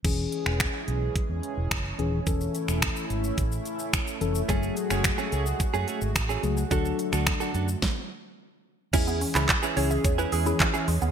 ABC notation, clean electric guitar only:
X:1
M:4/4
L:1/16
Q:1/4=108
K:E
V:1 name="Clean electric guitar"
z16 | z16 | [A,CG]2 z [A,CG] z [A,CG] [A,CG] z2 [A,CG] [A,CG] z2 [A,CG] z2 | [=DFA]2 z [DFA] z [DFA] [DFA] z8 z |
[CEG]2 z [CEG] z [CEG] [CEG] z2 [CEG] [CEG] z2 [CEG] z2 |]